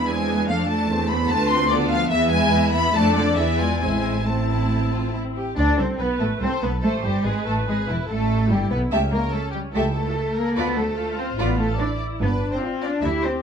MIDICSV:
0, 0, Header, 1, 6, 480
1, 0, Start_track
1, 0, Key_signature, 0, "minor"
1, 0, Tempo, 410116
1, 561, Time_signature, 4, 2, 24, 8
1, 3441, Tempo, 438596
1, 6321, Tempo, 419580
1, 8721, Tempo, 411241
1, 15433, End_track
2, 0, Start_track
2, 0, Title_t, "Violin section"
2, 0, Program_c, 0, 48
2, 83, Note_on_c, 0, 80, 72
2, 561, Note_off_c, 0, 80, 0
2, 567, Note_on_c, 0, 77, 73
2, 795, Note_on_c, 0, 81, 76
2, 799, Note_off_c, 0, 77, 0
2, 1267, Note_off_c, 0, 81, 0
2, 1285, Note_on_c, 0, 83, 81
2, 1506, Note_on_c, 0, 81, 95
2, 1521, Note_off_c, 0, 83, 0
2, 1749, Note_off_c, 0, 81, 0
2, 1756, Note_on_c, 0, 84, 91
2, 1975, Note_on_c, 0, 74, 80
2, 1992, Note_off_c, 0, 84, 0
2, 2213, Note_on_c, 0, 77, 91
2, 2220, Note_off_c, 0, 74, 0
2, 2452, Note_on_c, 0, 76, 99
2, 2453, Note_off_c, 0, 77, 0
2, 2693, Note_off_c, 0, 76, 0
2, 2705, Note_on_c, 0, 80, 90
2, 3183, Note_off_c, 0, 80, 0
2, 3189, Note_on_c, 0, 83, 91
2, 3434, Note_off_c, 0, 83, 0
2, 3434, Note_on_c, 0, 81, 89
2, 3669, Note_off_c, 0, 81, 0
2, 3680, Note_on_c, 0, 74, 82
2, 3905, Note_off_c, 0, 74, 0
2, 3907, Note_on_c, 0, 76, 77
2, 4140, Note_on_c, 0, 80, 76
2, 4144, Note_off_c, 0, 76, 0
2, 4367, Note_off_c, 0, 80, 0
2, 4380, Note_on_c, 0, 80, 69
2, 4862, Note_off_c, 0, 80, 0
2, 4868, Note_on_c, 0, 81, 55
2, 5840, Note_off_c, 0, 81, 0
2, 6313, Note_on_c, 0, 74, 68
2, 6404, Note_off_c, 0, 74, 0
2, 6555, Note_on_c, 0, 72, 49
2, 6647, Note_off_c, 0, 72, 0
2, 6805, Note_on_c, 0, 71, 59
2, 6896, Note_off_c, 0, 71, 0
2, 7029, Note_on_c, 0, 69, 55
2, 7121, Note_off_c, 0, 69, 0
2, 7265, Note_on_c, 0, 72, 65
2, 7505, Note_off_c, 0, 72, 0
2, 7509, Note_on_c, 0, 71, 58
2, 7740, Note_on_c, 0, 69, 58
2, 7752, Note_off_c, 0, 71, 0
2, 7983, Note_on_c, 0, 67, 61
2, 7986, Note_off_c, 0, 69, 0
2, 8229, Note_off_c, 0, 67, 0
2, 8231, Note_on_c, 0, 68, 65
2, 8470, Note_on_c, 0, 69, 57
2, 8477, Note_off_c, 0, 68, 0
2, 8562, Note_off_c, 0, 69, 0
2, 8726, Note_on_c, 0, 68, 59
2, 8955, Note_on_c, 0, 64, 56
2, 8961, Note_off_c, 0, 68, 0
2, 9186, Note_on_c, 0, 69, 65
2, 9203, Note_off_c, 0, 64, 0
2, 9680, Note_off_c, 0, 69, 0
2, 9695, Note_on_c, 0, 67, 59
2, 9925, Note_on_c, 0, 71, 55
2, 9932, Note_off_c, 0, 67, 0
2, 10018, Note_off_c, 0, 71, 0
2, 10171, Note_on_c, 0, 69, 56
2, 10265, Note_off_c, 0, 69, 0
2, 10402, Note_on_c, 0, 70, 64
2, 10641, Note_off_c, 0, 70, 0
2, 10647, Note_on_c, 0, 69, 68
2, 10867, Note_on_c, 0, 67, 52
2, 10888, Note_off_c, 0, 69, 0
2, 10960, Note_off_c, 0, 67, 0
2, 11111, Note_on_c, 0, 69, 61
2, 11335, Note_off_c, 0, 69, 0
2, 11349, Note_on_c, 0, 69, 63
2, 11829, Note_off_c, 0, 69, 0
2, 11840, Note_on_c, 0, 70, 66
2, 12078, Note_on_c, 0, 71, 69
2, 12083, Note_off_c, 0, 70, 0
2, 12317, Note_off_c, 0, 71, 0
2, 12318, Note_on_c, 0, 69, 63
2, 12790, Note_off_c, 0, 69, 0
2, 12804, Note_on_c, 0, 72, 59
2, 13041, Note_on_c, 0, 71, 57
2, 13044, Note_off_c, 0, 72, 0
2, 13135, Note_off_c, 0, 71, 0
2, 13278, Note_on_c, 0, 69, 61
2, 13518, Note_off_c, 0, 69, 0
2, 13529, Note_on_c, 0, 74, 67
2, 13770, Note_off_c, 0, 74, 0
2, 14018, Note_on_c, 0, 71, 64
2, 14345, Note_off_c, 0, 71, 0
2, 14371, Note_on_c, 0, 72, 50
2, 14465, Note_off_c, 0, 72, 0
2, 14729, Note_on_c, 0, 74, 58
2, 14822, Note_off_c, 0, 74, 0
2, 14956, Note_on_c, 0, 76, 67
2, 15049, Note_off_c, 0, 76, 0
2, 15199, Note_on_c, 0, 72, 62
2, 15292, Note_off_c, 0, 72, 0
2, 15433, End_track
3, 0, Start_track
3, 0, Title_t, "Violin section"
3, 0, Program_c, 1, 48
3, 0, Note_on_c, 1, 62, 56
3, 84, Note_on_c, 1, 68, 51
3, 562, Note_off_c, 1, 68, 0
3, 562, Note_on_c, 1, 69, 59
3, 1030, Note_off_c, 1, 69, 0
3, 1040, Note_on_c, 1, 72, 58
3, 1472, Note_off_c, 1, 62, 0
3, 1518, Note_off_c, 1, 72, 0
3, 1528, Note_on_c, 1, 71, 66
3, 1534, Note_on_c, 1, 65, 61
3, 1974, Note_off_c, 1, 65, 0
3, 1988, Note_on_c, 1, 65, 61
3, 1993, Note_on_c, 1, 69, 69
3, 1997, Note_off_c, 1, 71, 0
3, 2455, Note_off_c, 1, 65, 0
3, 2467, Note_off_c, 1, 69, 0
3, 2469, Note_on_c, 1, 64, 81
3, 2474, Note_on_c, 1, 76, 71
3, 3395, Note_off_c, 1, 64, 0
3, 3398, Note_off_c, 1, 76, 0
3, 3450, Note_on_c, 1, 74, 71
3, 3451, Note_on_c, 1, 69, 73
3, 3904, Note_off_c, 1, 74, 0
3, 3911, Note_off_c, 1, 69, 0
3, 3916, Note_on_c, 1, 68, 62
3, 3917, Note_on_c, 1, 74, 59
3, 4149, Note_off_c, 1, 68, 0
3, 4159, Note_on_c, 1, 65, 57
3, 4383, Note_off_c, 1, 74, 0
3, 4395, Note_off_c, 1, 65, 0
3, 4404, Note_on_c, 1, 72, 53
3, 4406, Note_on_c, 1, 64, 53
3, 4884, Note_off_c, 1, 72, 0
3, 4885, Note_off_c, 1, 64, 0
3, 4895, Note_on_c, 1, 60, 52
3, 5111, Note_off_c, 1, 60, 0
3, 5132, Note_on_c, 1, 64, 55
3, 5599, Note_off_c, 1, 64, 0
3, 5612, Note_on_c, 1, 65, 52
3, 5849, Note_off_c, 1, 65, 0
3, 5852, Note_on_c, 1, 64, 50
3, 5939, Note_off_c, 1, 64, 0
3, 6085, Note_on_c, 1, 67, 55
3, 6316, Note_off_c, 1, 67, 0
3, 6325, Note_on_c, 1, 62, 84
3, 6545, Note_off_c, 1, 62, 0
3, 6563, Note_on_c, 1, 60, 54
3, 6655, Note_off_c, 1, 60, 0
3, 6801, Note_on_c, 1, 59, 64
3, 7037, Note_off_c, 1, 59, 0
3, 7046, Note_on_c, 1, 57, 61
3, 7280, Note_on_c, 1, 60, 74
3, 7282, Note_off_c, 1, 57, 0
3, 7513, Note_off_c, 1, 60, 0
3, 7518, Note_on_c, 1, 59, 63
3, 7609, Note_off_c, 1, 59, 0
3, 7765, Note_on_c, 1, 57, 60
3, 7998, Note_off_c, 1, 57, 0
3, 8004, Note_on_c, 1, 55, 64
3, 8244, Note_off_c, 1, 55, 0
3, 8249, Note_on_c, 1, 56, 78
3, 8486, Note_off_c, 1, 56, 0
3, 8491, Note_on_c, 1, 57, 61
3, 8720, Note_off_c, 1, 57, 0
3, 8732, Note_on_c, 1, 56, 60
3, 8825, Note_off_c, 1, 56, 0
3, 8979, Note_on_c, 1, 64, 59
3, 9072, Note_off_c, 1, 64, 0
3, 9221, Note_on_c, 1, 57, 70
3, 9688, Note_off_c, 1, 57, 0
3, 9700, Note_on_c, 1, 55, 65
3, 9793, Note_off_c, 1, 55, 0
3, 9935, Note_on_c, 1, 59, 66
3, 10029, Note_off_c, 1, 59, 0
3, 10175, Note_on_c, 1, 76, 61
3, 10177, Note_on_c, 1, 67, 59
3, 10395, Note_off_c, 1, 76, 0
3, 10396, Note_off_c, 1, 67, 0
3, 11147, Note_on_c, 1, 76, 54
3, 11148, Note_on_c, 1, 67, 53
3, 11362, Note_off_c, 1, 76, 0
3, 11363, Note_off_c, 1, 67, 0
3, 12100, Note_on_c, 1, 65, 57
3, 12103, Note_on_c, 1, 74, 59
3, 12317, Note_off_c, 1, 65, 0
3, 12319, Note_off_c, 1, 74, 0
3, 13054, Note_on_c, 1, 65, 59
3, 13057, Note_on_c, 1, 74, 54
3, 13273, Note_off_c, 1, 65, 0
3, 13275, Note_off_c, 1, 74, 0
3, 14490, Note_on_c, 1, 74, 55
3, 14491, Note_on_c, 1, 65, 55
3, 14840, Note_off_c, 1, 74, 0
3, 14841, Note_off_c, 1, 65, 0
3, 15433, End_track
4, 0, Start_track
4, 0, Title_t, "Viola section"
4, 0, Program_c, 2, 48
4, 0, Note_on_c, 2, 64, 49
4, 101, Note_on_c, 2, 60, 50
4, 326, Note_off_c, 2, 60, 0
4, 329, Note_on_c, 2, 59, 61
4, 565, Note_off_c, 2, 59, 0
4, 565, Note_off_c, 2, 64, 0
4, 571, Note_on_c, 2, 62, 55
4, 573, Note_on_c, 2, 57, 52
4, 1035, Note_off_c, 2, 62, 0
4, 1038, Note_off_c, 2, 57, 0
4, 1052, Note_on_c, 2, 57, 61
4, 1054, Note_on_c, 2, 60, 63
4, 1271, Note_off_c, 2, 60, 0
4, 1285, Note_on_c, 2, 60, 57
4, 1379, Note_off_c, 2, 60, 0
4, 1534, Note_on_c, 2, 62, 58
4, 1979, Note_off_c, 2, 57, 0
4, 1990, Note_off_c, 2, 62, 0
4, 2003, Note_on_c, 2, 62, 60
4, 2004, Note_on_c, 2, 59, 61
4, 2463, Note_off_c, 2, 59, 0
4, 2463, Note_off_c, 2, 62, 0
4, 2484, Note_on_c, 2, 59, 63
4, 2485, Note_off_c, 2, 59, 0
4, 2485, Note_on_c, 2, 59, 72
4, 3403, Note_off_c, 2, 59, 0
4, 3447, Note_on_c, 2, 57, 62
4, 3451, Note_on_c, 2, 62, 62
4, 3900, Note_off_c, 2, 57, 0
4, 3911, Note_off_c, 2, 62, 0
4, 3927, Note_on_c, 2, 59, 59
4, 3929, Note_on_c, 2, 64, 54
4, 4385, Note_off_c, 2, 64, 0
4, 4388, Note_off_c, 2, 59, 0
4, 4391, Note_on_c, 2, 60, 49
4, 4398, Note_on_c, 2, 64, 51
4, 4871, Note_off_c, 2, 64, 0
4, 4878, Note_off_c, 2, 60, 0
4, 4887, Note_on_c, 2, 64, 54
4, 4890, Note_on_c, 2, 60, 57
4, 6078, Note_off_c, 2, 64, 0
4, 6080, Note_off_c, 2, 60, 0
4, 6337, Note_on_c, 2, 69, 57
4, 6776, Note_off_c, 2, 69, 0
4, 6806, Note_on_c, 2, 71, 58
4, 7273, Note_off_c, 2, 71, 0
4, 7285, Note_on_c, 2, 69, 51
4, 7754, Note_on_c, 2, 72, 60
4, 7759, Note_off_c, 2, 69, 0
4, 8230, Note_off_c, 2, 72, 0
4, 8249, Note_on_c, 2, 71, 63
4, 9191, Note_off_c, 2, 71, 0
4, 9202, Note_on_c, 2, 69, 59
4, 9678, Note_off_c, 2, 69, 0
4, 9694, Note_on_c, 2, 64, 50
4, 10171, Note_off_c, 2, 64, 0
4, 10174, Note_on_c, 2, 61, 58
4, 11131, Note_off_c, 2, 61, 0
4, 11132, Note_on_c, 2, 64, 52
4, 11602, Note_off_c, 2, 64, 0
4, 11605, Note_on_c, 2, 69, 62
4, 12563, Note_off_c, 2, 69, 0
4, 12565, Note_on_c, 2, 65, 66
4, 13507, Note_off_c, 2, 65, 0
4, 13535, Note_on_c, 2, 64, 56
4, 14003, Note_off_c, 2, 64, 0
4, 14020, Note_on_c, 2, 62, 62
4, 14490, Note_off_c, 2, 62, 0
4, 14509, Note_on_c, 2, 65, 63
4, 14968, Note_on_c, 2, 67, 60
4, 14972, Note_off_c, 2, 65, 0
4, 15433, Note_off_c, 2, 67, 0
4, 15433, End_track
5, 0, Start_track
5, 0, Title_t, "Cello section"
5, 0, Program_c, 3, 48
5, 99, Note_on_c, 3, 56, 65
5, 560, Note_off_c, 3, 56, 0
5, 565, Note_on_c, 3, 53, 73
5, 802, Note_off_c, 3, 53, 0
5, 805, Note_on_c, 3, 57, 64
5, 1272, Note_off_c, 3, 57, 0
5, 1282, Note_on_c, 3, 59, 71
5, 1519, Note_off_c, 3, 59, 0
5, 1527, Note_on_c, 3, 57, 82
5, 1754, Note_on_c, 3, 60, 78
5, 1759, Note_off_c, 3, 57, 0
5, 1986, Note_off_c, 3, 60, 0
5, 2000, Note_on_c, 3, 50, 64
5, 2093, Note_off_c, 3, 50, 0
5, 2240, Note_on_c, 3, 53, 83
5, 2333, Note_off_c, 3, 53, 0
5, 2473, Note_on_c, 3, 52, 85
5, 2704, Note_off_c, 3, 52, 0
5, 2704, Note_on_c, 3, 56, 74
5, 3183, Note_off_c, 3, 56, 0
5, 3193, Note_on_c, 3, 59, 81
5, 3441, Note_off_c, 3, 59, 0
5, 3443, Note_on_c, 3, 57, 90
5, 3669, Note_off_c, 3, 57, 0
5, 3677, Note_on_c, 3, 50, 75
5, 3908, Note_off_c, 3, 50, 0
5, 3911, Note_on_c, 3, 52, 64
5, 4146, Note_off_c, 3, 52, 0
5, 4152, Note_on_c, 3, 56, 66
5, 4239, Note_off_c, 3, 56, 0
5, 4389, Note_on_c, 3, 56, 75
5, 4867, Note_off_c, 3, 56, 0
5, 4882, Note_on_c, 3, 57, 56
5, 5847, Note_off_c, 3, 57, 0
5, 6327, Note_on_c, 3, 62, 92
5, 6547, Note_off_c, 3, 62, 0
5, 6569, Note_on_c, 3, 60, 71
5, 6806, Note_off_c, 3, 60, 0
5, 6809, Note_on_c, 3, 59, 76
5, 7046, Note_off_c, 3, 59, 0
5, 7052, Note_on_c, 3, 57, 61
5, 7143, Note_off_c, 3, 57, 0
5, 7297, Note_on_c, 3, 60, 77
5, 7389, Note_off_c, 3, 60, 0
5, 7524, Note_on_c, 3, 59, 62
5, 7616, Note_off_c, 3, 59, 0
5, 7760, Note_on_c, 3, 57, 74
5, 7852, Note_off_c, 3, 57, 0
5, 8008, Note_on_c, 3, 55, 70
5, 8241, Note_off_c, 3, 55, 0
5, 8242, Note_on_c, 3, 56, 83
5, 8482, Note_off_c, 3, 56, 0
5, 8483, Note_on_c, 3, 57, 69
5, 8575, Note_off_c, 3, 57, 0
5, 8732, Note_on_c, 3, 56, 69
5, 8826, Note_off_c, 3, 56, 0
5, 8976, Note_on_c, 3, 52, 63
5, 9069, Note_off_c, 3, 52, 0
5, 9224, Note_on_c, 3, 57, 76
5, 9690, Note_off_c, 3, 57, 0
5, 9697, Note_on_c, 3, 55, 77
5, 9933, Note_off_c, 3, 55, 0
5, 9944, Note_on_c, 3, 59, 69
5, 10037, Note_off_c, 3, 59, 0
5, 10189, Note_on_c, 3, 57, 69
5, 10281, Note_off_c, 3, 57, 0
5, 10414, Note_on_c, 3, 58, 70
5, 10508, Note_off_c, 3, 58, 0
5, 10654, Note_on_c, 3, 57, 72
5, 10747, Note_off_c, 3, 57, 0
5, 10899, Note_on_c, 3, 55, 63
5, 10993, Note_off_c, 3, 55, 0
5, 11140, Note_on_c, 3, 57, 81
5, 11234, Note_off_c, 3, 57, 0
5, 11382, Note_on_c, 3, 57, 67
5, 11846, Note_off_c, 3, 57, 0
5, 11854, Note_on_c, 3, 58, 78
5, 12090, Note_off_c, 3, 58, 0
5, 12100, Note_on_c, 3, 59, 91
5, 12331, Note_on_c, 3, 57, 77
5, 12333, Note_off_c, 3, 59, 0
5, 12806, Note_off_c, 3, 57, 0
5, 12808, Note_on_c, 3, 60, 71
5, 12902, Note_off_c, 3, 60, 0
5, 13059, Note_on_c, 3, 59, 75
5, 13288, Note_off_c, 3, 59, 0
5, 13289, Note_on_c, 3, 57, 73
5, 13382, Note_off_c, 3, 57, 0
5, 13532, Note_on_c, 3, 62, 76
5, 13625, Note_off_c, 3, 62, 0
5, 14028, Note_on_c, 3, 59, 80
5, 14121, Note_off_c, 3, 59, 0
5, 14372, Note_on_c, 3, 60, 72
5, 14717, Note_off_c, 3, 60, 0
5, 14738, Note_on_c, 3, 62, 71
5, 14968, Note_off_c, 3, 62, 0
5, 14980, Note_on_c, 3, 64, 83
5, 15209, Note_off_c, 3, 64, 0
5, 15220, Note_on_c, 3, 60, 71
5, 15433, Note_off_c, 3, 60, 0
5, 15433, End_track
6, 0, Start_track
6, 0, Title_t, "Double bass section"
6, 0, Program_c, 4, 48
6, 0, Note_on_c, 4, 40, 57
6, 541, Note_off_c, 4, 40, 0
6, 552, Note_on_c, 4, 41, 60
6, 1033, Note_on_c, 4, 40, 61
6, 1035, Note_off_c, 4, 41, 0
6, 1512, Note_on_c, 4, 38, 70
6, 1515, Note_off_c, 4, 40, 0
6, 2461, Note_on_c, 4, 40, 77
6, 2463, Note_off_c, 4, 38, 0
6, 3391, Note_off_c, 4, 40, 0
6, 3446, Note_on_c, 4, 41, 73
6, 3907, Note_on_c, 4, 40, 64
6, 3909, Note_off_c, 4, 41, 0
6, 4387, Note_off_c, 4, 40, 0
6, 4393, Note_on_c, 4, 33, 58
6, 6100, Note_off_c, 4, 33, 0
6, 6324, Note_on_c, 4, 38, 86
6, 6545, Note_off_c, 4, 38, 0
6, 6555, Note_on_c, 4, 36, 65
6, 6799, Note_off_c, 4, 36, 0
6, 6801, Note_on_c, 4, 35, 64
6, 6893, Note_off_c, 4, 35, 0
6, 7041, Note_on_c, 4, 33, 65
6, 7133, Note_off_c, 4, 33, 0
6, 7269, Note_on_c, 4, 36, 71
6, 7361, Note_off_c, 4, 36, 0
6, 7511, Note_on_c, 4, 35, 57
6, 7748, Note_off_c, 4, 35, 0
6, 7755, Note_on_c, 4, 33, 65
6, 7998, Note_off_c, 4, 33, 0
6, 8000, Note_on_c, 4, 31, 55
6, 8091, Note_off_c, 4, 31, 0
6, 8242, Note_on_c, 4, 32, 71
6, 8333, Note_off_c, 4, 32, 0
6, 8481, Note_on_c, 4, 33, 56
6, 8715, Note_off_c, 4, 33, 0
6, 8717, Note_on_c, 4, 32, 58
6, 8962, Note_off_c, 4, 32, 0
6, 8964, Note_on_c, 4, 28, 55
6, 9207, Note_off_c, 4, 28, 0
6, 9208, Note_on_c, 4, 33, 70
6, 9682, Note_off_c, 4, 33, 0
6, 9692, Note_on_c, 4, 31, 66
6, 9931, Note_off_c, 4, 31, 0
6, 9935, Note_on_c, 4, 35, 55
6, 10167, Note_off_c, 4, 35, 0
6, 10174, Note_on_c, 4, 37, 65
6, 10571, Note_off_c, 4, 37, 0
6, 11131, Note_on_c, 4, 37, 59
6, 11531, Note_off_c, 4, 37, 0
6, 12085, Note_on_c, 4, 38, 61
6, 12484, Note_off_c, 4, 38, 0
6, 13041, Note_on_c, 4, 33, 70
6, 13444, Note_off_c, 4, 33, 0
6, 14010, Note_on_c, 4, 31, 72
6, 14385, Note_off_c, 4, 31, 0
6, 14971, Note_on_c, 4, 38, 68
6, 15344, Note_off_c, 4, 38, 0
6, 15433, End_track
0, 0, End_of_file